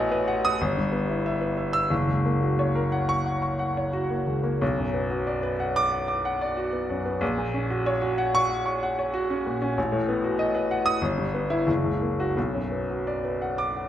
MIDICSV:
0, 0, Header, 1, 2, 480
1, 0, Start_track
1, 0, Key_signature, 2, "minor"
1, 0, Tempo, 645161
1, 922, Tempo, 672646
1, 1399, Time_signature, 4, 2, 24, 8
1, 3802, Tempo, 645856
1, 6202, Tempo, 634249
1, 8602, Tempo, 694444
1, 10129, End_track
2, 0, Start_track
2, 0, Title_t, "Grand piano"
2, 0, Program_c, 0, 0
2, 0, Control_c, 0, 64, 127
2, 0, Note_on_c, 0, 33, 112
2, 0, Note_on_c, 0, 45, 72
2, 0, Note_on_c, 0, 59, 74
2, 0, Note_on_c, 0, 66, 70
2, 0, Note_on_c, 0, 75, 81
2, 85, Note_on_c, 0, 71, 84
2, 158, Note_off_c, 0, 75, 0
2, 206, Note_on_c, 0, 78, 83
2, 273, Note_off_c, 0, 71, 0
2, 332, Note_on_c, 0, 87, 115
2, 393, Note_off_c, 0, 78, 0
2, 411, Note_off_c, 0, 33, 0
2, 445, Note_off_c, 0, 87, 0
2, 452, Control_c, 0, 64, 0
2, 453, Note_on_c, 0, 31, 92
2, 454, Note_off_c, 0, 45, 0
2, 455, Note_off_c, 0, 59, 0
2, 455, Note_off_c, 0, 66, 0
2, 567, Control_c, 0, 64, 127
2, 574, Note_on_c, 0, 43, 60
2, 686, Note_on_c, 0, 59, 71
2, 759, Note_off_c, 0, 43, 0
2, 813, Note_on_c, 0, 64, 65
2, 877, Note_off_c, 0, 59, 0
2, 936, Note_on_c, 0, 76, 71
2, 999, Note_off_c, 0, 64, 0
2, 1044, Note_on_c, 0, 71, 68
2, 1119, Note_off_c, 0, 76, 0
2, 1160, Note_on_c, 0, 76, 59
2, 1233, Note_off_c, 0, 71, 0
2, 1274, Note_on_c, 0, 88, 99
2, 1352, Note_off_c, 0, 76, 0
2, 1379, Note_off_c, 0, 31, 0
2, 1397, Note_off_c, 0, 88, 0
2, 1397, Note_on_c, 0, 30, 88
2, 1414, Control_c, 0, 64, 0
2, 1515, Control_c, 0, 64, 127
2, 1522, Note_on_c, 0, 37, 60
2, 1645, Note_on_c, 0, 58, 59
2, 1714, Note_off_c, 0, 37, 0
2, 1770, Note_on_c, 0, 66, 57
2, 1837, Note_off_c, 0, 58, 0
2, 1886, Note_on_c, 0, 73, 68
2, 1960, Note_off_c, 0, 66, 0
2, 2003, Note_on_c, 0, 70, 70
2, 2078, Note_off_c, 0, 73, 0
2, 2122, Note_on_c, 0, 78, 70
2, 2196, Note_off_c, 0, 70, 0
2, 2241, Note_on_c, 0, 85, 94
2, 2316, Note_off_c, 0, 78, 0
2, 2362, Note_on_c, 0, 78, 67
2, 2436, Note_off_c, 0, 85, 0
2, 2480, Note_on_c, 0, 85, 64
2, 2557, Note_off_c, 0, 78, 0
2, 2601, Note_on_c, 0, 78, 69
2, 2676, Note_off_c, 0, 85, 0
2, 2730, Note_on_c, 0, 73, 64
2, 2796, Note_off_c, 0, 78, 0
2, 2844, Note_on_c, 0, 66, 72
2, 2920, Note_off_c, 0, 73, 0
2, 2968, Note_on_c, 0, 58, 49
2, 3038, Note_off_c, 0, 66, 0
2, 3082, Note_on_c, 0, 37, 47
2, 3160, Note_off_c, 0, 58, 0
2, 3201, Note_on_c, 0, 58, 63
2, 3277, Note_off_c, 0, 37, 0
2, 3298, Note_off_c, 0, 30, 0
2, 3325, Note_off_c, 0, 58, 0
2, 3331, Note_on_c, 0, 35, 86
2, 3343, Control_c, 0, 64, 0
2, 3444, Note_on_c, 0, 42, 63
2, 3481, Control_c, 0, 64, 127
2, 3563, Note_on_c, 0, 59, 64
2, 3636, Note_off_c, 0, 42, 0
2, 3678, Note_on_c, 0, 66, 61
2, 3753, Note_off_c, 0, 59, 0
2, 3797, Note_on_c, 0, 74, 69
2, 3871, Note_off_c, 0, 66, 0
2, 3917, Note_on_c, 0, 71, 73
2, 3992, Note_off_c, 0, 74, 0
2, 4042, Note_on_c, 0, 78, 66
2, 4113, Note_off_c, 0, 71, 0
2, 4163, Note_on_c, 0, 86, 104
2, 4235, Note_off_c, 0, 78, 0
2, 4279, Note_on_c, 0, 78, 63
2, 4356, Note_off_c, 0, 86, 0
2, 4401, Note_on_c, 0, 86, 72
2, 4473, Note_off_c, 0, 78, 0
2, 4528, Note_on_c, 0, 78, 73
2, 4593, Note_off_c, 0, 86, 0
2, 4649, Note_on_c, 0, 74, 71
2, 4716, Note_off_c, 0, 78, 0
2, 4765, Note_on_c, 0, 66, 70
2, 4836, Note_off_c, 0, 74, 0
2, 4882, Note_on_c, 0, 59, 55
2, 4954, Note_off_c, 0, 66, 0
2, 5009, Note_on_c, 0, 42, 58
2, 5073, Note_off_c, 0, 59, 0
2, 5125, Note_on_c, 0, 59, 65
2, 5198, Note_off_c, 0, 42, 0
2, 5214, Note_off_c, 0, 35, 0
2, 5240, Note_on_c, 0, 34, 91
2, 5244, Note_off_c, 0, 59, 0
2, 5256, Control_c, 0, 64, 0
2, 5365, Note_on_c, 0, 46, 67
2, 5397, Control_c, 0, 64, 127
2, 5484, Note_on_c, 0, 61, 71
2, 5557, Note_off_c, 0, 46, 0
2, 5605, Note_on_c, 0, 66, 70
2, 5676, Note_off_c, 0, 61, 0
2, 5725, Note_on_c, 0, 73, 84
2, 5797, Note_off_c, 0, 66, 0
2, 5839, Note_on_c, 0, 66, 77
2, 5916, Note_off_c, 0, 73, 0
2, 5961, Note_on_c, 0, 78, 76
2, 6033, Note_off_c, 0, 66, 0
2, 6084, Note_on_c, 0, 85, 117
2, 6153, Note_off_c, 0, 78, 0
2, 6196, Note_on_c, 0, 78, 69
2, 6275, Note_off_c, 0, 85, 0
2, 6317, Note_on_c, 0, 85, 76
2, 6392, Note_off_c, 0, 78, 0
2, 6448, Note_on_c, 0, 78, 77
2, 6514, Note_off_c, 0, 85, 0
2, 6568, Note_on_c, 0, 73, 71
2, 6639, Note_off_c, 0, 78, 0
2, 6681, Note_on_c, 0, 66, 80
2, 6758, Note_off_c, 0, 73, 0
2, 6805, Note_on_c, 0, 61, 67
2, 6874, Note_off_c, 0, 66, 0
2, 6926, Note_on_c, 0, 46, 63
2, 6995, Note_off_c, 0, 61, 0
2, 7044, Note_on_c, 0, 61, 77
2, 7114, Note_off_c, 0, 46, 0
2, 7128, Note_off_c, 0, 34, 0
2, 7161, Note_off_c, 0, 61, 0
2, 7164, Note_on_c, 0, 33, 90
2, 7175, Control_c, 0, 64, 0
2, 7274, Note_on_c, 0, 45, 75
2, 7312, Control_c, 0, 64, 127
2, 7399, Note_on_c, 0, 59, 75
2, 7465, Note_off_c, 0, 45, 0
2, 7517, Note_on_c, 0, 66, 67
2, 7586, Note_off_c, 0, 59, 0
2, 7629, Note_on_c, 0, 75, 80
2, 7704, Note_off_c, 0, 66, 0
2, 7746, Note_on_c, 0, 71, 75
2, 7820, Note_off_c, 0, 75, 0
2, 7871, Note_on_c, 0, 78, 81
2, 7938, Note_off_c, 0, 71, 0
2, 7982, Note_on_c, 0, 87, 111
2, 8061, Note_off_c, 0, 78, 0
2, 8082, Note_off_c, 0, 33, 0
2, 8101, Note_on_c, 0, 31, 89
2, 8105, Note_off_c, 0, 87, 0
2, 8121, Control_c, 0, 64, 0
2, 8225, Note_on_c, 0, 43, 61
2, 8258, Control_c, 0, 64, 127
2, 8349, Note_on_c, 0, 59, 71
2, 8424, Note_off_c, 0, 43, 0
2, 8470, Note_on_c, 0, 64, 90
2, 8550, Note_off_c, 0, 59, 0
2, 8583, Note_off_c, 0, 31, 0
2, 8598, Note_on_c, 0, 30, 81
2, 8599, Note_off_c, 0, 64, 0
2, 8616, Control_c, 0, 64, 0
2, 8718, Note_on_c, 0, 37, 57
2, 8751, Control_c, 0, 64, 127
2, 8839, Note_on_c, 0, 58, 53
2, 8908, Note_off_c, 0, 37, 0
2, 8963, Note_on_c, 0, 66, 79
2, 9031, Note_off_c, 0, 58, 0
2, 9062, Note_off_c, 0, 30, 0
2, 9080, Note_on_c, 0, 35, 75
2, 9081, Note_off_c, 0, 66, 0
2, 9089, Control_c, 0, 64, 0
2, 9201, Note_on_c, 0, 42, 60
2, 9229, Control_c, 0, 64, 127
2, 9323, Note_on_c, 0, 59, 52
2, 9395, Note_off_c, 0, 42, 0
2, 9447, Note_on_c, 0, 66, 57
2, 9516, Note_off_c, 0, 59, 0
2, 9567, Note_on_c, 0, 74, 61
2, 9639, Note_off_c, 0, 66, 0
2, 9687, Note_on_c, 0, 71, 60
2, 9759, Note_off_c, 0, 74, 0
2, 9806, Note_on_c, 0, 78, 62
2, 9879, Note_off_c, 0, 71, 0
2, 9920, Note_on_c, 0, 86, 79
2, 9997, Note_off_c, 0, 78, 0
2, 10045, Note_on_c, 0, 78, 57
2, 10112, Note_off_c, 0, 86, 0
2, 10129, Note_off_c, 0, 35, 0
2, 10129, Note_off_c, 0, 78, 0
2, 10129, End_track
0, 0, End_of_file